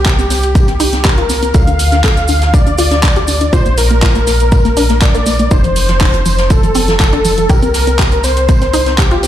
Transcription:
Already playing: analog synth bass C2, analog synth lead G4
0.05 synth arpeggio sound G4, kick, snare, clap, closed hi-hat, tambourine, cabasa
0.19 synth arpeggio sound C4, closed hi-hat, cabasa
0.30 synth arpeggio sound C4, snare, open hi-hat, tambourine, cabasa
0.42 closed hi-hat, cabasa
0.55 synth arpeggio sound C4, kick, closed hi-hat, tambourine, cabasa
0.68 synth arpeggio sound C4, snare, closed hi-hat, cabasa
0.80 synth arpeggio sound D#4, open hi-hat, tambourine, cabasa
0.93 synth arpeggio sound C4, snare, closed hi-hat, cabasa
1.05 synth arpeggio sound C4, analog synth lead A#4, kick, snare, clap, closed hi-hat, tambourine, cabasa
1.18 synth arpeggio sound F4, closed hi-hat
1.29 synth arpeggio sound C4, snare, open hi-hat, tambourine, cabasa
1.43 synth arpeggio sound C4, closed hi-hat, cabasa
1.54 analog synth bass D2, synth arpeggio sound A4, analog synth lead F5, kick, closed hi-hat, tambourine, cabasa
1.67 synth arpeggio sound D4, closed hi-hat, cabasa
1.79 open hi-hat, tambourine, cabasa
1.92 synth arpeggio sound D4, snare, closed hi-hat, cabasa
2.04 synth arpeggio sound A4, kick, snare, clap, closed hi-hat, open hi-hat, cabasa
2.17 synth arpeggio sound D4, closed hi-hat, cabasa
2.28 synth arpeggio sound D4, open hi-hat, tambourine, cabasa
2.42 snare, closed hi-hat, cabasa
2.54 synth arpeggio sound D4, analog synth lead D5, kick, closed hi-hat, tambourine, cabasa
2.67 synth arpeggio sound D4, closed hi-hat, cabasa
2.78 synth arpeggio sound F4, open hi-hat, tambourine, cabasa
2.91 synth arpeggio sound D4, snare, closed hi-hat, cabasa
3.03 synth arpeggio sound D4, kick, snare, clap, closed hi-hat, tambourine, cabasa
3.16 synth arpeggio sound G4, closed hi-hat
3.27 synth arpeggio sound D4, open hi-hat, tambourine, cabasa
3.41 synth arpeggio sound D4, closed hi-hat, cabasa
3.53 analog synth bass A#1, synth arpeggio sound F4, analog synth lead C5, kick, closed hi-hat, tambourine, cabasa
3.66 synth arpeggio sound A#3, closed hi-hat, cabasa
3.77 analog synth lead A#4, snare, open hi-hat, tambourine, cabasa
3.91 synth arpeggio sound A#3, closed hi-hat, cabasa
4.02 synth arpeggio sound F4, kick, snare, clap, closed hi-hat, tambourine, cabasa
4.15 synth arpeggio sound A#3, closed hi-hat, cabasa
4.27 synth arpeggio sound A#3, snare, open hi-hat, tambourine, cabasa
4.40 closed hi-hat, cabasa
4.52 synth arpeggio sound A#3, kick, closed hi-hat, tambourine, cabasa
4.65 synth arpeggio sound A#3, snare, closed hi-hat, cabasa
4.77 synth arpeggio sound D4, open hi-hat, tambourine, cabasa
4.89 synth arpeggio sound A#3, snare, closed hi-hat, cabasa
5.01 synth arpeggio sound A#3, analog synth lead D5, kick, snare, clap, closed hi-hat, tambourine, cabasa
5.15 synth arpeggio sound A#3, closed hi-hat, cabasa
5.26 synth arpeggio sound A#3, snare, open hi-hat, tambourine, cabasa
5.39 synth arpeggio sound A#3, closed hi-hat, cabasa
5.51 analog synth bass F1, synth arpeggio sound D#4, analog synth lead C5, kick, closed hi-hat, tambourine, cabasa
5.64 synth arpeggio sound F3, closed hi-hat, cabasa
5.76 open hi-hat, tambourine, cabasa
5.88 synth arpeggio sound F3, snare, closed hi-hat, cabasa
6.01 synth arpeggio sound D#4, kick, snare, clap, closed hi-hat, open hi-hat, cabasa
6.13 synth arpeggio sound F3, closed hi-hat, cabasa
6.26 synth arpeggio sound F3, open hi-hat, tambourine, cabasa
6.39 snare, closed hi-hat, cabasa
6.50 synth arpeggio sound F3, analog synth lead A4, kick, closed hi-hat, tambourine, cabasa
6.63 synth arpeggio sound F3, closed hi-hat, cabasa
6.74 synth arpeggio sound C4, open hi-hat, tambourine, cabasa
6.88 synth arpeggio sound F3, snare, closed hi-hat, cabasa
7.00 synth arpeggio sound F3, analog synth lead A4, kick, snare, clap, closed hi-hat, tambourine, cabasa
7.13 synth arpeggio sound D4, closed hi-hat
7.25 synth arpeggio sound F3, open hi-hat, tambourine, cabasa
7.38 synth arpeggio sound F3, closed hi-hat, cabasa
7.49 analog synth bass C2, synth arpeggio sound G4, analog synth lead A#4, kick, closed hi-hat, tambourine, cabasa
7.62 synth arpeggio sound C4, closed hi-hat, cabasa
7.74 snare, open hi-hat, tambourine, cabasa
7.87 synth arpeggio sound C4, closed hi-hat, cabasa
7.99 synth arpeggio sound G4, kick, snare, clap, closed hi-hat, tambourine, cabasa
8.11 synth arpeggio sound C4, closed hi-hat, cabasa
8.24 synth arpeggio sound C4, analog synth lead C5, snare, open hi-hat, tambourine, cabasa
8.37 closed hi-hat, cabasa
8.49 synth arpeggio sound C4, kick, closed hi-hat, tambourine, cabasa
8.62 synth arpeggio sound C4, snare, closed hi-hat, cabasa
8.73 synth arpeggio sound D#4, open hi-hat, tambourine, cabasa
8.86 synth arpeggio sound C4, snare, closed hi-hat, cabasa
8.98 synth arpeggio sound C4, analog synth lead G4, kick, snare, clap, closed hi-hat, tambourine, cabasa
9.11 synth arpeggio sound F4, closed hi-hat
9.23 synth arpeggio sound C4, snare, open hi-hat, tambourine, cabasa

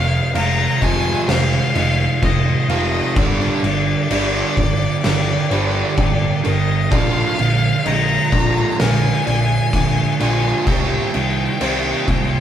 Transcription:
Already playing: picked electric bass F1, distorted electric guitar F2 C3, clean electric guitar F2 C3, string section D#3 G#3 F4 C5, felt piano D#5, violin F5
0.35 picked electric bass F1, distorted electric guitar F2 C3, clean electric guitar G#3, felt piano F5, violin A#5, crash
0.81 picked electric bass F1, distorted electric guitar F2 C3 F3, clean electric guitar C4, felt piano D#5, violin G#5, kick, crash
1.28 picked electric bass F1, distorted electric guitar F2 C3, clean electric guitar G#3, felt piano C5, violin F5, snare, crash
1.75 picked electric bass F1, distorted electric guitar F2 C3, clean electric guitar D#3, felt piano D#5, crash
2.22 picked electric bass F1, distorted electric guitar F2 C3, clean electric guitar C4, violin D#5, kick, crash
2.68 picked electric bass F1, distorted electric guitar F2 C3 F3, clean electric guitar D#3, violin D#5, felt piano F5, crash
3.16 picked electric bass G1, distorted electric guitar G2 D3 G3, clean electric guitar G2, string section D3 G3 A#4, violin D5, kick, crash
3.40 snare
3.63 picked electric bass G1, distorted electric guitar G2 D3, clean electric guitar D3, crash
4.10 picked electric bass G1, distorted electric guitar G2 D3 G3, clean electric guitar A#3, felt piano D5, crash
4.57 picked electric bass G1, distorted electric guitar G2 D3, kick, crash
5.03 picked electric bass G1, distorted electric guitar G2 D3, clean electric guitar A#3, string section G4, snare, crash
5.50 picked electric bass G1, distorted electric guitar G2 D3 G3, clean electric guitar F3, felt piano C5, crash
5.97 picked electric bass G1, distorted electric guitar G2 D3, felt piano D5, kick, crash
6.44 picked electric bass G1, distorted electric guitar G2 D3, clean electric guitar F3, felt piano A#4, violin D#5, crash
6.90 picked electric bass A#1, distorted electric guitar A#2 D3 F3, clean electric guitar A#2, string section G#3 F4, felt piano D5, violin F5, kick, crash
7.38 picked electric bass A#1, distorted electric guitar A#2 D3, clean electric guitar F3, crash
7.85 picked electric bass A#1, distorted electric guitar A#2 D3, clean electric guitar G#3, felt piano D#5, violin A#5, crash
8.32 picked electric bass A#1, distorted electric guitar A#2 D3 F3, clean electric guitar D4, felt piano D5, kick, crash
8.79 picked electric bass A#1, distorted electric guitar A#2 D3, clean electric guitar G#3, string section F4, felt piano A#4, violin G#5, snare, crash
9.26 picked electric bass A#1, distorted electric guitar A#2 D3, clean electric guitar F3, felt piano D5, crash
9.73 picked electric bass A#1, distorted electric guitar A#2 D3, clean electric guitar D4, kick, crash
10.20 picked electric bass A#1, distorted electric guitar A#2 D3 F3, clean electric guitar F3, felt piano D5, violin G#5, crash
10.67 picked electric bass C2, distorted electric guitar C3 G3 C4, clean electric guitar C3, string section D#3 A#3 C5, violin G5, kick, crash
11.14 picked electric bass C2, distorted electric guitar C3 G3, clean electric guitar D#3, crash
11.61 picked electric bass C2, distorted electric guitar C3 G3 C4, clean electric guitar A#3, felt piano C5, crash
12.08 picked electric bass C2, distorted electric guitar C3 G3, clean electric guitar C4, kick, crash

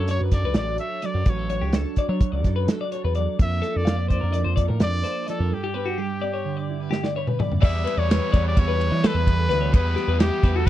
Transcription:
Already playing: picked electric bass F#2, clean electric guitar D4 F#4 A4, trumpet C#5
0.08 clean electric guitar F#3 C#5, trumpet C#5, snare, closed hi-hat
0.21 picked electric bass F#2, clean electric guitar B4
0.31 picked electric bass F#2, clean electric guitar A4 C#5, trumpet D5, kick, snare, closed hi-hat
0.43 picked electric bass C#2, clean electric guitar B4
0.54 picked electric bass A1, clean electric guitar F#4 D5, snare, closed hi-hat
0.58 trumpet D5
0.78 clean electric guitar A4 C#5, trumpet E5, closed hi-hat
1.02 clean electric guitar F#3 D5, trumpet D5, snare, closed hi-hat
1.14 picked electric bass F#2, clean electric guitar C#5
1.26 picked electric bass A1, clean electric guitar F#3 B4, kick, closed hi-hat
1.30 trumpet C#5
1.38 clean electric guitar A4
1.50 clean electric guitar F#4 C#5, closed hi-hat
1.61 picked electric bass C#2, clean electric guitar G4
1.73 clean electric guitar D4 A4, snare, closed hi-hat
1.96 clean electric guitar D5, kick, closed hi-hat
2.00 clean electric guitar F#4
2.09 picked electric bass F#3, clean electric guitar C#5
2.21 clean electric guitar F#3, kick, closed hi-hat
2.32 picked electric bass C#2, clean electric guitar D5
2.44 picked electric bass F#2, clean electric guitar A4, kick, snare, closed hi-hat
2.56 clean electric guitar B4
2.68 clean electric guitar F#4 A4, snare, closed hi-hat
2.81 clean electric guitar D5
2.92 clean electric guitar A4 C#5, closed hi-hat
3.04 picked electric bass E2, clean electric guitar B4
3.15 clean electric guitar F#3 D5, closed hi-hat
3.39 picked electric bass F2, clean electric guitar F3 A#3 D4 A4 A#4, trumpet E5, kick, closed hi-hat
3.62 clean electric guitar D4 A4, snare, closed hi-hat
3.76 picked electric bass F2, trumpet D5
3.85 clean electric guitar A#3 F5, snare, closed hi-hat
3.96 clean electric guitar D5
4.08 clean electric guitar C5, trumpet D5, kick, closed hi-hat
4.13 clean electric guitar D4
4.21 picked electric bass F2, clean electric guitar A#4
4.33 clean electric guitar F3 D5, closed hi-hat
4.44 picked electric bass F2, clean electric guitar C5
4.56 picked electric bass F2, clean electric guitar A4 D5, kick, closed hi-hat
4.68 picked electric bass A2, clean electric guitar A#4
4.80 picked electric bass F2, clean electric guitar D4 D5, trumpet D5, snare, closed hi-hat
5.04 clean electric guitar A4 C5, snare, closed hi-hat
5.27 clean electric guitar F3 D5, trumpet A4, snare, closed hi-hat
5.40 picked electric bass F2, clean electric guitar A#4
5.51 clean electric guitar G2 A4, trumpet G4
5.64 clean electric guitar G4
5.74 clean electric guitar B3 B4
5.86 clean electric guitar F#4
5.98 clean electric guitar G3 G4
6.22 clean electric guitar B3 D5
6.34 clean electric guitar C#5
6.45 clean electric guitar D3
6.57 clean electric guitar D5
6.69 clean electric guitar E4
6.80 clean electric guitar B4
6.91 clean electric guitar B3 G4, snare
7.04 clean electric guitar D5, snare
7.16 clean electric guitar B4 C#5
7.27 clean electric guitar B4, mid tom
7.39 clean electric guitar G2 D5, mid tom
7.52 floor tom
7.62 picked electric bass E2, overdriven electric guitar E3 G3 B3 E4, clean electric guitar D5, trumpet E5, kick, crash
7.84 clean electric guitar B4, snare, ride
7.97 picked electric bass E2, trumpet C#5, clean electric guitar D5
8.09 clean electric guitar B4, snare, ride
8.32 picked electric bass E2, clean electric guitar D5, kick, snare, ride
8.44 clean electric guitar C#5, trumpet D5
8.56 picked electric bass E2, trumpet C#5, clean electric guitar E5, kick, ride
8.68 clean electric guitar B4
8.81 ride
8.91 picked electric bass E3, clean electric guitar D5
9.04 clean electric guitar A4, trumpet B4, snare, ride
9.14 picked electric bass E2, clean electric guitar B4
9.27 kick, ride
9.38 clean electric guitar A4
9.49 picked electric bass D2, clean electric guitar B4, snare, ride
9.61 clean electric guitar C#5
9.72 picked electric bass E2, overdriven electric guitar E3 G3 B3 E4, clean electric guitar B4, trumpet B4, kick, ride
9.96 clean electric guitar G4, snare, ride
10.08 picked electric bass E2, clean electric guitar B4
10.19 trumpet G4, clean electric guitar G4, snare, ride
10.43 picked electric bass E2, clean electric guitar B4, kick, snare, ride
10.56 clean electric guitar F#4, trumpet A4
10.66 trumpet B4

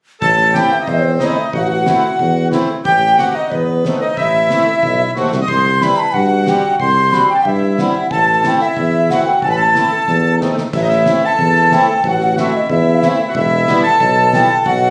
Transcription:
0.21 tuba A1, accordion A4, bansuri A5, kick
0.54 accordion A3 C4 E4 G4, bansuri G5, snare
0.71 bansuri E5, snare
0.80 accordion D#4
0.86 tuba E2, accordion C4, bansuri C5, kick
1.19 accordion A3 C4 D#4 E4, bansuri D#5, snare
1.39 bansuri E5
1.53 tuba A1, accordion F#4, bansuri F#5, kick
1.86 accordion A3 C4 E4, snare
2.19 tuba E2, kick
2.52 accordion A3 C4 E4, snare
2.85 tuba A1, accordion G4, bansuri G5, kick
3.17 accordion A3 C4 F#4 G4, bansuri F#5, snare
3.33 accordion D#4, bansuri D#5
3.50 tuba E2, accordion B3, bansuri B4, kick
3.84 accordion A3 C4 D#4, bansuri C5, snare
4.00 accordion D#4, bansuri D#5
4.17 tuba A1, accordion E4, bansuri E5, kick
4.50 accordion A3 C4 E4, snare
4.83 tuba B1, kick
5.16 tuba D#2, accordion A3 C4 F#4, snare
5.31 tuba C2, snare
5.41 accordion D#5
5.47 tuba C2, accordion C5, bansuri C6, kick
5.81 accordion G3 C4 E4 B4, bansuri B5, snare
5.98 bansuri A5
6.14 tuba G2, accordion F#4, bansuri F#5, kick
6.47 accordion G3 C4 G4, bansuri G5, snare
6.80 tuba C2, accordion C5, bansuri C6, kick
7.13 accordion G3 C4 F#4, bansuri B5, snare
7.29 accordion G4, bansuri G5
7.34 accordion G4 A4
7.45 tuba G2, accordion E4, bansuri E5, kick
7.78 accordion G3 C4 E4, bansuri F#5, snare
8.11 tuba A1, accordion A4, bansuri A5, kick
8.44 accordion A3 C4 E4, bansuri G5, snare
8.60 accordion E4
8.64 bansuri E5
8.76 tuba E2, kick
9.09 accordion A3 C4 E4 F#4, bansuri F#5, snare
9.26 bansuri G5
9.42 tuba A1, accordion A4, bansuri A5, kick
9.49 accordion B4
9.55 accordion A4
9.75 accordion A3 C4 E4, snare
10.08 tuba E2, kick, snare
10.40 accordion A3 C4 D#4, snare
10.58 snare
10.73 tuba A1, accordion E4, bansuri E5, kick, crash
10.82 accordion D#4
10.89 accordion E4, snare
11.06 accordion A3 C4 E4, snare
11.24 accordion A4, bansuri A5
11.39 tuba E2, kick
11.71 accordion A3 C4 E4, bansuri G5, snare
12.04 tuba A1, accordion F#4, bansuri F#5, kick
12.20 snare
12.37 accordion A3 C4 E4 F#4, bansuri E5, snare
12.55 bansuri D#5
12.70 tuba E2, accordion E4, bansuri E5, kick
13.02 accordion A3 C4 E4, snare
13.28 accordion F#4
13.35 tuba E1, accordion E4, bansuri E5, kick
13.67 accordion G3 B3 E4, snare
13.83 accordion A4, bansuri A5, snare
14.00 tuba B1, kick
14.33 accordion G3 B3 E4, bansuri G5, snare
14.66 tuba B1, accordion F#4, bansuri F#5, kick

